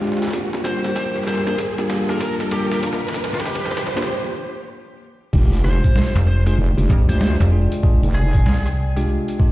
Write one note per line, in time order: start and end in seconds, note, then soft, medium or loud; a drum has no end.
0.00 0.29 G#3 medium
0.00 0.26 G#3 medium
0.00 0.26 D4 medium
0.00 4.04 F4 medium
0.00 0.26 F4 medium
0.00 0.26 G4 loud
0.00 0.30 C5 medium
0.00 0.29 D5 medium
0.00 snare soft
0.00 riser medium
0.07 snare soft
0.12 snare medium
0.17 snare medium
0.22 snare medium
0.22 closed hi-hat medium
0.25 snare medium
0.28 snare medium
0.31 1.42 A#3 medium
0.31 1.42 D4 medium
0.31 1.42 F4 medium
0.31 1.42 G4 medium
0.31 snare medium
0.33 4.05 G3 medium
0.33 4.05 A#4 medium
0.33 kick loud
0.33 snare medium
0.33 closed hi-hat medium
0.53 snare medium
0.65 1.16 C5 medium
0.65 snare loud
0.65 closed hi-hat medium
0.84 snare medium
0.84 closed hi-hat soft
0.96 kick loud
0.96 snare medium
0.96 closed hi-hat medium
1.16 snare soft
1.23 1.40 C5 medium
1.23 snare medium
1.27 snare medium
1.27 closed hi-hat medium
1.31 snare medium
1.34 snare medium
1.37 snare soft
1.44 1.57 A#3 medium
1.44 1.57 D4 medium
1.44 1.57 F4 medium
1.44 1.57 A#4 medium
1.44 1.54 C5 medium
1.44 snare soft
1.47 snare medium
1.58 kick loud
1.58 snare loud
1.58 closed hi-hat medium
1.78 1.88 A#3 medium
1.78 1.88 D4 medium
1.78 1.88 F4 medium
1.78 1.88 G4 medium
1.78 snare medium
1.90 2.06 A#3 medium
1.90 2.06 D4 medium
1.90 2.06 F4 medium
1.90 2.06 G4 medium
1.90 snare loud
1.90 closed hi-hat medium
2.09 2.49 A#3 medium
2.09 2.49 D4 medium
2.09 2.49 F4 medium
2.09 2.49 G4 medium
2.09 2.17 A#4 medium
2.09 snare medium
2.21 2.33 A#4 medium
2.21 kick loud
2.21 snare loud
2.21 closed hi-hat medium
2.40 snare medium
2.40 closed hi-hat medium
2.51 2.81 A#3 medium
2.51 2.81 D4 medium
2.51 2.81 F4 medium
2.51 2.65 G4 medium
2.51 2.81 A#4 medium
2.51 snare loud
2.72 2.79 G4 medium
2.72 snare medium
2.72 closed hi-hat medium
2.83 3.00 A#3 loud
2.83 3.00 D4 medium
2.83 3.00 F4 medium
2.83 3.00 A#4 loud
2.83 kick loud
2.83 snare loud
2.83 closed hi-hat medium
2.93 snare medium
3.08 snare medium
3.14 snare loud
3.14 closed hi-hat medium
3.24 snare medium
3.34 3.77 G4 loud
3.34 snare medium
3.34 closed hi-hat soft
3.40 snare medium
3.46 kick loud
3.46 snare loud
3.46 closed hi-hat medium
3.55 snare medium
3.65 snare medium
3.71 snare medium
3.77 snare loud
3.77 closed hi-hat medium
3.87 snare medium
3.96 4.08 A#3 medium
3.96 4.08 D4 medium
3.96 4.08 F4 medium
3.96 4.08 G4 loud
3.96 snare loud
3.96 closed hi-hat soft
4.02 snare loud
5.33 5.81 F1 medium
5.33 6.42 G#3 medium
5.33 6.42 D4 medium
5.33 6.42 F4 medium
5.33 6.42 G4 medium
5.33 9.52 D5 medium
5.33 9.52 G5 medium
5.33 kick loud
5.33 crash loud
5.53 closed hi-hat soft
5.64 6.16 C5 medium
5.64 cross-stick soft
5.84 kick loud
5.84 closed hi-hat medium
5.96 snare loud
6.15 6.57 F1 loud
6.15 cross-stick soft
6.15 closed hi-hat soft
6.27 6.40 C5 medium
6.47 6.57 G#3 medium
6.47 6.57 D4 medium
6.47 6.57 F4 medium
6.47 6.57 G#4 medium
6.47 6.54 C5 medium
6.47 closed hi-hat medium
6.58 6.75 F1 loud
6.78 6.88 F1 loud
6.78 6.88 G#3 medium
6.78 6.88 D4 medium
6.78 6.88 F4 medium
6.78 6.88 G4 medium
6.78 closed hi-hat medium
6.89 7.06 F2 loud
6.89 7.06 G#3 medium
6.89 7.06 D4 medium
6.89 7.06 F4 medium
6.89 7.06 G4 medium
6.89 kick loud
7.09 7.37 D2 loud
7.09 7.49 G#3 medium
7.09 7.49 D4 medium
7.09 7.49 F4 medium
7.09 7.49 G4 medium
7.09 7.17 C5 medium
7.09 closed hi-hat medium
7.21 7.34 C5 medium
7.21 snare loud
7.40 7.69 F1 medium
7.40 closed hi-hat medium
7.52 7.80 G#3 medium
7.52 7.80 D4 medium
7.52 7.80 F4 medium
7.52 7.80 G#4 medium
7.72 closed hi-hat medium
7.83 8.00 G#3 loud
7.83 8.00 D4 medium
7.83 8.00 F4 medium
7.83 8.00 G#4 loud
7.83 kick loud
8.03 8.44 F1 loud
8.03 closed hi-hat soft
8.15 8.66 G#4 medium
8.15 cross-stick soft
8.34 kick loud
8.34 closed hi-hat medium
8.46 9.06 C2 loud
8.46 snare loud
8.66 cross-stick soft
8.66 closed hi-hat soft
8.96 9.37 G#3 medium
8.96 9.37 D4 medium
8.96 9.37 F4 medium
8.96 9.37 G4 loud
8.96 closed hi-hat medium
9.28 closed hi-hat medium
9.39 9.52 G#3 medium
9.39 9.52 D4 medium
9.39 9.52 F4 medium
9.39 9.52 G4 loud
9.39 kick loud